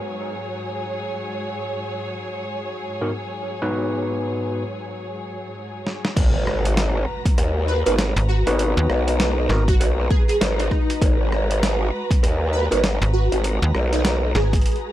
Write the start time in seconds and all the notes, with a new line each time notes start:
Already playing: G#2 F#3 G#4 C#5
3.01 G#2 B3 D#4 F#4 A#4
3.62 G#2 B3 D#4 F#4 B4
5.87 snare
6.05 snare
6.16 G#1 G#3 F#4 B4 A#5, kick, closed hi-hat, crash, impact
6.47 cross-stick
6.65 closed hi-hat
6.77 snare, closed hi-hat
7.25 kick, closed hi-hat
7.38 D#2, cross-stick, closed hi-hat
7.68 B4
7.86 G#1 B3 D#4 F#4 A#4 B4, closed hi-hat
7.99 snare, closed hi-hat
8.16 G#1, closed hi-hat
8.28 F#4
8.47 G#1 B3 D#4 F#4 B4, closed hi-hat
8.59 closed hi-hat
8.77 D#2
8.90 B1, cross-stick
9.08 closed hi-hat
9.20 snare, closed hi-hat
9.49 G#1 B3 D#4 F#4 A#4, snare
9.68 F#4, kick, closed hi-hat
9.80 B1, closed hi-hat
10.10 G#4, kick
10.28 G#4, closed hi-hat
10.41 G#1, snare, closed hi-hat
10.59 D#4, closed hi-hat
10.71 kick, cross-stick
10.90 closed hi-hat
11.02 G#1, kick, closed hi-hat
11.32 cross-stick
11.51 closed hi-hat
11.63 snare, closed hi-hat
12.11 kick, closed hi-hat
12.23 D#2, cross-stick, closed hi-hat
12.53 B4
12.71 G#1 B3 D#4 F#4 A#4 B4, closed hi-hat
12.84 snare, closed hi-hat
13.02 G#1, closed hi-hat
13.13 F#4
13.32 G#1, closed hi-hat
13.44 closed hi-hat
13.62 D#2
13.75 B1, cross-stick
13.93 D#4, closed hi-hat
14.05 snare, closed hi-hat
14.35 G#1 G#4, snare
14.53 kick, closed hi-hat
14.55 closed hi-hat
14.62 closed hi-hat
14.66 closed hi-hat
14.72 closed hi-hat
14.76 closed hi-hat